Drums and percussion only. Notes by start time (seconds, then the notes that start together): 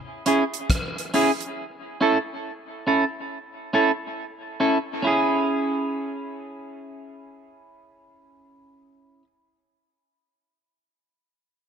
0.26 closed hi-hat
0.54 closed hi-hat
0.70 kick, cross-stick, closed hi-hat
0.98 closed hi-hat
1.14 open hi-hat
1.40 closed hi-hat